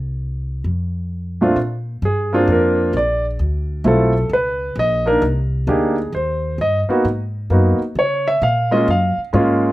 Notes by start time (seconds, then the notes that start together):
Already playing: C2
0.64 F2
1.41 A#2 A3 C4 D4 F4
1.56 A#2
2.02 G2 G#4
2.33 A#3 C4 D4 F4
2.47 F2
2.52 A#4
2.93 A#1 D5
3.39 D2
3.84 B1 A3 C4 E4 F4 A4
4.29 C#2 B4
4.76 A#1 D#5
5.06 A#3 D4 D#4 A#4
5.22 C2
5.67 D2 A#3 D4 D#4 G4 G#4
6.12 D#2 C5
6.58 G2 D#5
6.88 A#3 B3 D#4 F#4, muted upright bass stroke
7.05 G#2
7.50 F#2 A#3 B3 D#4 F#4
7.80 muted upright bass stroke
7.95 C#3 C#5
8.28 E5
8.42 A#2 F5
8.71 G#3 A#3 C#4 F4 D#5
8.88 F#2 F5
9.17 muted upright bass stroke
9.33 G#2 G#3 A#3 C#4 F4